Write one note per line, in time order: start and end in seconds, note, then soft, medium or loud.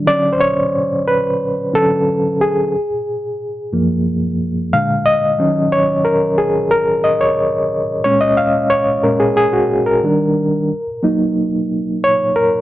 0.06 0.51 D3 medium
0.06 0.51 F#3 soft
0.06 0.52 C#4 medium
0.06 0.34 D5 loud
0.33 0.40 C5 medium
0.40 1.09 C#5 loud
1.08 1.76 B4 medium
1.73 2.03 D3 soft
1.73 2.03 F#3 soft
1.73 2.04 C#4 medium
1.73 2.43 A4 medium
2.41 4.03 G#4 medium
3.72 4.68 F#2 soft
3.72 4.69 F3 soft
3.72 4.69 A#3 medium
4.73 5.36 A#2 medium
4.73 5.36 D3 medium
4.73 5.36 G#3 soft
4.73 5.07 F5 medium
5.06 5.74 D#5 loud
5.39 6.34 D#3 medium
5.39 6.35 F#3 soft
5.39 6.35 C#4 medium
5.72 6.07 C#5 loud
6.05 6.39 A#4 medium
6.38 6.53 G#4 medium
6.71 7.02 A#4 loud
7.04 7.22 D#5 medium
7.21 7.84 C#5 medium
8.04 9.02 A#2 medium
8.04 9.03 G#3 medium
8.04 9.03 C#4 medium
8.04 8.20 C#5 medium
8.21 8.38 D#5 loud
8.37 8.72 F5 medium
8.70 9.05 C#5 loud
9.03 9.34 A#2 soft
9.03 9.34 G#3 soft
9.03 9.34 C#4 medium
9.03 9.21 A#4 medium
9.20 9.27 G#4 medium
9.37 9.54 G#4 medium
9.53 9.88 F#4 medium
9.86 11.49 A#4 medium
10.03 10.48 D#3 medium
10.03 10.48 G3 soft
10.03 10.48 D4 medium
11.03 11.47 F#3 medium
11.03 11.48 A#3 medium
11.03 11.48 D#4 medium
12.04 12.38 C#5 loud
12.36 12.61 A#4 medium